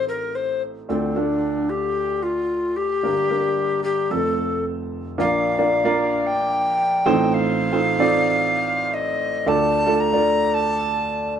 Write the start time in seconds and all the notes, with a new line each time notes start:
Already playing: A1 A2 C4 D#4 F4 G4 A4
0.09 A#4
0.35 C5
0.89 D2 D3 A3 C4 D4 F4 A4
1.16 A3 D4 F4 A4
1.70 G4
2.23 F4
2.76 G4
3.03 G1 G2 A#3 D4 G4 A#4
3.30 A#3 D4 G4 A#4
3.84 G4
4.10 F1 F2 A3 C4 F4 A4
5.18 A#1 A#2 A#3 D4 F4 A#4 D5 F5
5.58 A#3 D4 F4 A#4 D5
5.85 A#3 D4 F4 A#4 D5
6.27 G5
7.06 A1 A2 C4 D#4 F4 A4 C5
7.34 F5
7.72 C4 D#4 F4 A4 C5
7.99 C4 D#4 F4 A4 D5
8.94 D#5
9.46 D2 D3 A3 D4 F4 A4 D5 A5
9.86 A3 D4 F4 A4 D5
10.00 A#5
10.13 A3 D4 F4 D5
10.54 A5